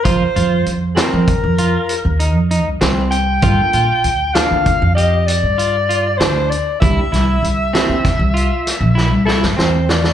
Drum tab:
HH |x-x-x-x-x-x-x-x-x-x-x-|x-x-x-x-x-x-x-x-x-x-x-|x-x-x-x-x-x-x---------|
SD |------o-----------o---|------o-----------o---|--o---o-o---o-o-ooo-oo|
BD |o-------o-------------|o-------o-------------|o-------o-------------|